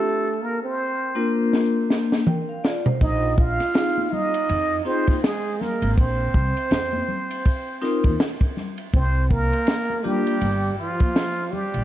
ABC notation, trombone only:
X:1
M:4/4
L:1/16
Q:"Swing 16ths" 1/4=81
K:Cphr
V:1 name="Trombone"
=A,2 B, C4 z8 z | E2 F4 E4 C2 A,2 B,2 | C12 z4 | C2 B,4 G,4 F,4 G,2 |]